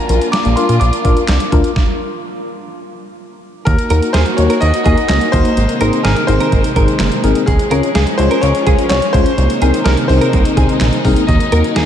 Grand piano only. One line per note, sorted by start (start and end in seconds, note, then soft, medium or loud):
0.00 0.34 A#5 loud
0.32 0.55 D6 loud
0.56 0.81 C6 medium
0.80 3.14 D6 medium
3.65 4.10 A#4 medium
4.13 4.18 C5 loud
4.37 4.62 C#5 loud
4.61 4.83 D#5 loud
4.84 5.07 D#5 loud
5.08 5.33 D#5 loud
5.32 6.00 C5 loud
6.03 6.29 A#4 medium
6.27 7.19 C5 loud
7.46 8.20 G#4 loud
8.18 8.40 C5 loud
8.41 8.88 C#5 loud
8.89 9.14 C#5 loud
9.13 9.87 C5 loud
9.84 9.90 A#4 medium
10.08 11.00 C5 medium
11.27 11.86 D#5 medium